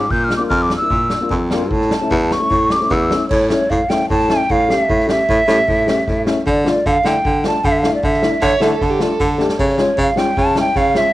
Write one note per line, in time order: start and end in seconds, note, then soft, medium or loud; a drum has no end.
0.00 0.12 G#2 medium
0.00 0.12 D6 medium
0.10 0.35 A#2 medium
0.10 0.26 G6 medium
0.10 kick medium
0.10 snare soft
0.24 0.34 D4 soft
0.24 0.36 F6 medium
0.30 0.35 F4 soft
0.30 snare loud
0.37 0.49 A#3 medium
0.37 0.50 D4 medium
0.37 0.50 F4 medium
0.37 0.43 D6 medium
0.49 0.75 F2 loud
0.49 0.64 F6 loud
0.49 kick medium
0.62 0.76 D6 loud
0.69 0.75 D4 soft
0.69 0.76 F4 soft
0.69 snare medium
0.77 1.33 E6 loud
0.81 0.91 A#3 soft
0.81 0.91 D4 soft
0.81 0.92 E4 medium
0.90 1.14 A#2 medium
0.90 kick medium
1.10 1.16 D4 soft
1.10 1.16 F4 soft
1.10 snare medium
1.21 1.31 A#3 medium
1.21 1.31 D4 medium
1.21 1.32 F4 medium
1.30 1.72 F2 medium
1.30 kick medium
1.30 snare soft
1.51 1.61 A#3 medium
1.51 1.62 D4 medium
1.51 1.62 F4 loud
1.51 snare medium
1.71 1.95 A2 loud
1.71 2.34 A5 medium
1.71 kick medium
1.81 snare soft
1.89 1.95 C#4 soft
1.89 1.96 E4 soft
1.89 snare loud
2.01 2.11 A3 medium
2.01 2.11 C#4 medium
2.01 2.12 E4 medium
2.11 2.35 E2 loud
2.11 kick medium
2.30 2.35 C#4 soft
2.30 2.36 E4 soft
2.30 2.73 C#6 loud
2.30 snare medium
2.40 2.50 A3 medium
2.40 2.51 C#4 soft
2.40 2.51 E4 medium
2.51 2.75 A2 medium
2.51 kick medium
2.70 2.75 C#4 soft
2.70 2.76 G4 medium
2.70 2.94 D6 medium
2.70 snare loud
2.80 2.91 A3 medium
2.80 2.91 C#4 soft
2.80 2.92 E4 medium
2.80 snare soft
2.91 3.14 E2 loud
2.91 3.29 E6 medium
2.91 kick medium
2.91 snare soft
3.10 3.20 A3 medium
3.10 3.21 C#4 medium
3.10 3.21 E4 medium
3.10 snare medium
3.21 snare soft
3.29 3.55 A2 loud
3.29 3.48 C#5 medium
3.29 kick loud
3.29 snare soft
3.29 crash medium
3.41 snare soft
3.50 3.60 A3 medium
3.50 3.60 C#4 medium
3.50 3.61 E4 medium
3.50 3.72 C#5 medium
3.50 snare loud
3.70 3.82 A2 medium
3.70 3.91 F5 medium
3.70 kick medium
3.70 snare soft
3.89 4.00 A3 medium
3.89 4.00 C#4 medium
3.89 4.01 E4 medium
3.89 4.09 G5 loud
3.89 snare medium
4.10 4.34 A2 medium
4.10 4.32 A5 loud
4.10 kick medium
4.28 4.39 A3 medium
4.28 4.40 C#4 medium
4.28 4.40 E4 medium
4.28 4.53 G5 loud
4.28 snare medium
4.50 4.74 A2 medium
4.50 4.72 F5 loud
4.50 kick medium
4.68 4.78 A3 medium
4.68 4.79 C#4 medium
4.68 4.79 G4 medium
4.68 5.09 E5 medium
4.68 snare medium
4.89 5.13 A2 medium
4.89 kick medium
5.00 snare soft
5.07 5.17 A3 medium
5.07 5.18 C#4 medium
5.07 5.18 G4 medium
5.07 6.23 E5 loud
5.07 snare medium
5.19 snare soft
5.29 5.41 A2 loud
5.29 kick medium
5.29 snare soft
5.47 5.59 A2 loud
5.47 5.57 A3 medium
5.47 5.58 C#4 medium
5.47 5.58 G4 medium
5.47 snare medium
5.68 5.92 A2 medium
5.68 kick medium
5.87 5.97 A3 medium
5.87 5.97 C#4 medium
5.87 5.98 G4 medium
5.87 snare loud
6.07 6.31 A2 medium
6.07 kick medium
6.07 snare soft
6.26 6.36 A3 medium
6.26 6.37 C#4 medium
6.26 6.37 E4 medium
6.26 snare medium
6.47 6.70 D3 loud
6.47 6.65 D5 medium
6.47 kick medium
6.47 snare soft
6.64 6.75 A3 medium
6.64 6.76 D4 medium
6.64 6.76 F4 medium
6.64 snare medium
6.69 6.88 D5 medium
6.86 6.98 D3 medium
6.86 7.08 F5 loud
6.86 kick medium
7.04 7.17 D3 medium
7.04 7.14 A3 medium
7.04 7.15 D4 medium
7.04 7.16 E4 medium
7.04 7.45 G5 loud
7.04 snare medium
7.25 7.48 D3 medium
7.25 kick medium
7.44 7.54 A3 medium
7.44 7.54 D4 medium
7.44 7.55 F4 medium
7.44 7.67 A5 loud
7.44 snare loud
7.64 7.88 D3 loud
7.64 7.73 F5 loud
7.64 kick medium
7.72 7.80 E5 medium
7.79 7.94 F5 medium
7.83 7.93 A3 medium
7.83 7.94 D4 medium
7.83 7.94 E4 medium
7.83 snare medium
7.95 8.06 D5 medium
8.03 8.27 D3 medium
8.03 8.82 E5 medium
8.03 kick loud
8.14 snare soft
8.22 8.32 A3 medium
8.22 8.33 D4 medium
8.22 8.33 E4 medium
8.22 snare medium
8.42 8.54 D3 loud
8.42 8.63 C#5 loud
8.42 kick medium
8.42 snare soft
8.60 8.73 D3 medium
8.60 8.70 A3 medium
8.60 8.71 D4 medium
8.60 8.71 E4 loud
8.60 8.73 A4 medium
8.60 snare medium
8.73 8.91 A4 medium
8.81 9.05 D3 medium
8.81 kick medium
8.81 snare soft
8.90 9.02 G4 medium
8.99 9.09 A3 medium
8.99 9.10 D4 medium
8.99 9.10 F4 medium
8.99 9.49 A4 medium
8.99 snare medium
9.20 9.43 D3 medium
9.20 kick medium
9.38 9.48 A3 medium
9.38 9.49 D4 medium
9.38 9.49 G4 loud
9.38 snare soft
9.49 snare medium
9.59 9.82 C#3 medium
9.59 9.77 C#5 medium
9.59 kick medium
9.59 crash medium
9.69 snare soft
9.78 9.88 G#3 medium
9.78 9.88 C#4 medium
9.78 9.89 F4 medium
9.78 10.01 C#5 medium
9.78 snare medium
9.98 10.10 C#3 loud
9.98 10.19 F5 loud
9.98 kick medium
10.08 snare soft
10.16 10.26 G#3 medium
10.16 10.26 C#4 medium
10.16 10.27 F4 medium
10.16 10.40 G5 loud
10.16 snare medium
10.37 10.60 C#3 medium
10.37 10.57 A5 loud
10.37 kick medium
10.55 10.65 G#3 medium
10.55 10.65 C#4 medium
10.55 10.66 E4 medium
10.55 snare medium
10.60 10.79 G5 loud
10.75 10.99 C#3 medium
10.75 10.99 F5 loud
10.75 kick medium
10.75 snare soft
10.94 11.04 G#3 medium
10.94 11.04 C#4 medium
10.94 11.05 F4 medium
10.94 11.13 E5 loud
10.94 snare medium